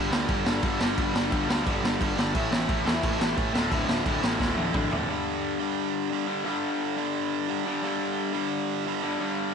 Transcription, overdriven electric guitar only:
Already playing: G2 D3 G3
0.11 G2 D3 G3
0.28 G2 D3 G3
0.46 G2 D3 G3
0.62 G2 D3 G3
0.79 G2 D3 G3
0.97 G2 D3 G3
1.14 G2 D3 G3
1.31 G2 D3 G3
1.48 G2 D3 G3
1.66 G2 D3 G3
1.83 G2 D3 G3
2.00 G2 D3 G3
2.17 G2 D3 G3
2.34 A2 E3 A3
2.52 A2 E3 A3
2.69 A2 E3 A3
2.86 A2 E3 A3
3.02 A2 E3 A3
3.19 A2 E3 A3
3.36 A2 E3 A3
3.54 D2 A2 D3
3.70 D2 A2 D3
3.88 D2 A2 D3
4.05 D2 A2 D3
4.21 D2 A2 D3
4.38 D2 A2 D3
4.56 D2 A2 D3
4.73 D2 A2 D3
4.91 D2 A2 D3
5.08 G2 D3 G3
6.27 G2 D3 G3
6.44 G2 D3 G3
7.65 G2 D3 G3
7.82 G2 D3 G3
9.02 G2 D3 G3
9.19 G2 D3 G3

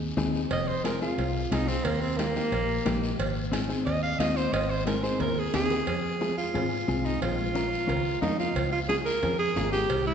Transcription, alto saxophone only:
0.52 D#5
0.67 C5
0.84 A#4
1.02 F4
1.52 D#4
1.68 C4
1.85 A#3
2.01 C4
2.17 A#3
3.86 D#5
4.03 F5
4.19 D#5
4.37 C5
4.53 D#5
4.70 C5
4.86 A#4
5.03 C5
5.20 A#4
5.38 G#4
5.54 G#4
5.87 G#4
6.37 F4
7.05 D#4
7.22 F4
8.21 D#4
8.39 F4
8.72 F4
8.89 G#4
9.05 A#4
9.39 G#4
9.72 G4
10.07 E4

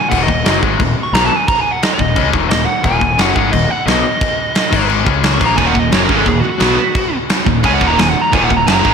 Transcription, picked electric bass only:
0.11 D#1
0.28 D#1
0.45 F#1
0.63 G#1
0.80 D#1
0.97 muted picked electric bass stroke
1.13 B1
1.99 D#1
2.16 C#2
2.33 D#1
2.50 D#1
2.84 D#1
3.01 D#1
3.18 F#1
3.36 G#1
3.53 D#1
3.69 muted picked electric bass stroke
3.86 B1
4.72 G#1
5.06 C#2
5.41 A#1
5.58 D#1
5.75 D#1
5.92 F#1
6.09 G#1
6.26 D#1
6.44 muted picked electric bass stroke
6.61 B1
7.46 D#1
7.64 C#2
7.81 D#1
7.98 D#1
8.33 D#1
8.50 D#1
8.67 F#1
8.85 G#1

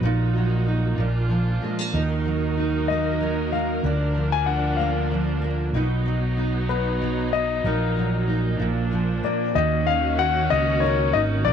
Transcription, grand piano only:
2.88 D#5
3.52 F5
4.32 G#5
4.46 F#5
4.77 F5
6.69 B4
7.33 D#5
7.66 A#4
9.24 D5
9.55 D#5
9.87 F5
10.19 F#5
10.50 D#5
10.80 C#5
11.13 D#5
11.45 D5

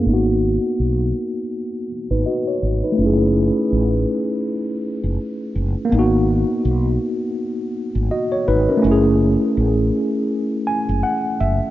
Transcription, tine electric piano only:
0.00 A#3
0.04 B3
0.09 D#4
0.13 F#4
2.11 D#4 B4
2.26 F#4 D#5
2.47 C#5
2.84 D#4 B4
2.92 A3
2.97 C#4
3.02 E4
3.06 G#4
5.85 A#3
5.90 B3
5.94 D#4
5.99 F#4
8.11 F#4 D#5
8.32 C#5
8.48 D#4 B4
8.69 C#4 A#4
8.77 A3
8.82 C#4
8.86 E4
8.91 G#4
10.67 G#5
11.03 F#5
11.40 E5

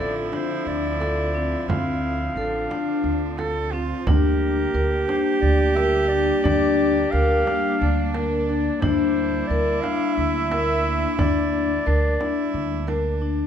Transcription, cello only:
Already playing: E4
2.38 D4
3.39 A4
3.72 F4
4.07 G4
7.81 D4
8.83 E4
11.87 D4
12.20 E4
12.88 D4

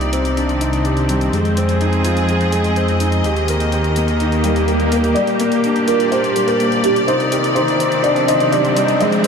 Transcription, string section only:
Already playing: C3 A#3 C4 G4 D5
0.28 D#3
1.33 F3
1.65 G#4
2.20 D#5
3.24 D#3
3.43 A#3
4.11 G4
5.15 A#2
5.77 D5
7.07 C3
7.26 C4
7.40 D#3
9.01 F3

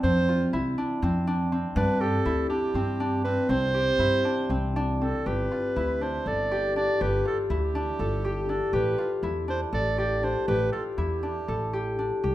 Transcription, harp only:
Already playing: D4 E4
0.04 C4
0.29 F4
0.53 E4
0.78 D4
1.03 C4
1.27 D4
1.52 C4
1.77 D4
2.01 G4
2.26 E4
2.50 D4
2.75 C4
3.00 D4
3.25 C4
3.50 C4
3.74 G4
3.99 E4
4.25 D4
4.50 C4
4.76 D4
5.01 C4
5.26 G4
5.51 F4
5.76 E4
6.01 D4
6.27 A4
6.51 G4
6.76 D4
7.01 G4
7.25 F4
7.50 E4
7.75 D4
8.00 A4
8.25 G4
8.49 D4
8.73 G4
8.98 F4
9.23 E4
9.48 D4
9.73 A4
9.98 G4
10.23 D4
10.48 G4
10.73 F4
10.98 E4
11.23 D4
11.48 A4
11.73 G4
11.99 D4
12.23 G4

